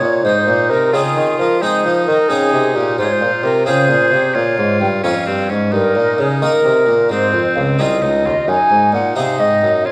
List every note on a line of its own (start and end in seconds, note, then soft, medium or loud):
0.00 0.22 A#2 soft
0.00 0.25 A#2 medium
0.00 0.22 C#5 medium
0.23 0.46 G#2 medium
0.23 0.45 G#2 soft
0.23 0.47 G#3 medium
0.23 0.89 D#4 medium
0.23 0.71 C5 medium
0.46 0.71 A#2 medium
0.46 0.68 A#2 soft
0.69 0.92 C3 medium
0.69 0.91 C3 soft
0.69 0.95 A#4 medium
0.92 1.03 C#3 medium
0.92 1.14 C#3 medium
0.92 1.26 C4 soft
0.92 1.27 D#4 soft
0.92 1.64 F4 medium
0.92 1.38 G#4 medium
0.92 1.44 G#4 soft
1.16 1.38 D#3 medium
1.16 1.37 D#3 soft
1.38 1.63 F3 medium
1.38 1.60 F3 soft
1.38 1.60 A#4 medium
1.60 1.86 G#3 medium
1.60 1.82 G#3 soft
1.60 1.79 C4 soft
1.60 2.98 D#4 medium
1.60 1.79 D#4 soft
1.60 2.12 G#4 soft
1.60 2.05 C5 medium
1.85 2.07 F3 medium
1.85 2.05 F3 soft
2.06 2.18 D#3 medium
2.06 2.28 D#3 soft
2.06 2.30 A#4 medium
2.28 2.50 C#3 medium
2.28 2.53 C#3 medium
2.28 2.63 C4 soft
2.28 2.63 D#4 soft
2.28 2.77 G#4 medium
2.28 2.79 G#4 soft
2.53 2.73 C3 soft
2.53 2.77 C3 medium
2.75 2.98 A#2 medium
2.75 2.96 A#2 medium
2.75 2.96 G4 medium
2.97 3.19 G#2 medium
2.97 3.09 G#2 medium
2.97 3.20 G#3 medium
2.97 3.65 F4 medium
2.97 3.06 C5 medium
3.04 3.13 C#5 medium
3.12 3.44 C5 medium
3.21 3.41 A#2 soft
3.21 3.31 A#2 medium
3.43 3.68 C3 medium
3.43 3.64 C3 medium
3.43 3.66 A#4 medium
3.66 3.87 C#3 soft
3.66 3.90 C#3 medium
3.66 3.83 C4 soft
3.66 4.16 F4 soft
3.66 4.36 G#4 medium
3.66 4.16 G#4 soft
3.66 4.36 C5 medium
3.89 4.14 A#2 medium
3.89 4.10 A#2 medium
4.12 4.33 C3 soft
4.12 4.35 C3 medium
4.34 4.56 A#2 soft
4.34 4.57 A#2 medium
4.34 5.03 F4 medium
4.34 4.79 C#5 medium
4.58 4.79 G#2 soft
4.58 4.80 G#2 medium
4.80 5.01 G2 soft
4.80 5.03 G2 medium
4.80 4.86 G5 medium
5.03 5.14 F2 medium
5.03 5.24 F2 soft
5.03 5.53 A#3 soft
5.03 5.26 C#4 medium
5.03 5.53 F4 soft
5.03 5.54 C#5 soft
5.03 5.48 F5 medium
5.27 5.49 G2 soft
5.27 5.47 G2 soft
5.27 5.51 C4 medium
5.49 5.71 G#2 medium
5.49 5.72 G#2 medium
5.49 5.74 C#4 medium
5.72 5.93 G2 soft
5.72 5.97 G2 medium
5.72 6.82 D#4 medium
5.72 6.21 A#4 medium
5.95 6.16 A#2 soft
5.95 6.18 A#2 medium
6.18 6.39 C#3 soft
6.18 6.29 C#3 medium
6.18 6.44 G#4 medium
6.41 6.52 D#3 medium
6.41 6.62 D#3 soft
6.41 6.59 A#3 soft
6.41 6.91 D#4 soft
6.41 7.10 A#4 medium
6.41 6.92 A#4 soft
6.64 6.85 C3 soft
6.64 6.87 C3 medium
6.87 7.07 A#2 soft
6.87 7.12 A#2 medium
7.09 7.30 G#2 soft
7.09 7.32 G#2 medium
7.09 7.32 G#3 medium
7.09 7.83 C4 medium
7.09 7.55 C5 medium
7.33 7.53 F2 soft
7.33 7.43 F2 soft
7.55 7.78 C#2 medium
7.55 7.76 C#2 soft
7.55 7.61 F5 medium
7.79 7.99 C2 soft
7.79 8.01 C2 medium
7.79 7.95 C4 soft
7.79 7.95 D#4 soft
7.79 8.04 F4 medium
7.79 8.29 G#4 soft
7.79 8.50 D#5 medium
8.02 8.24 C#2 soft
8.02 8.23 C#2 soft
8.02 8.27 D#4 medium
8.25 8.35 D#2 medium
8.25 8.46 D#2 soft
8.25 8.47 F4 medium
8.47 8.58 F#2 medium
8.47 8.69 F#2 soft
8.47 9.15 D#4 medium
8.47 8.93 G#5 medium
8.70 8.91 G#2 soft
8.70 8.92 G#2 medium
8.93 9.14 A#2 soft
8.93 9.15 A#2 medium
8.93 9.15 F#5 medium
9.16 9.37 C3 soft
9.16 9.39 C3 medium
9.16 9.66 C4 soft
9.16 9.66 D#4 soft
9.16 9.87 D#4 medium
9.16 9.66 G#4 soft
9.16 9.41 F5 medium
9.39 9.60 G#2 soft
9.39 9.49 G#2 soft
9.39 9.84 D#5 medium
9.62 9.83 F#2 soft
9.62 9.88 F#2 medium
9.85 9.92 F2 soft
9.85 9.92 F2 medium
9.85 9.92 F4 medium
9.85 9.92 C#5 medium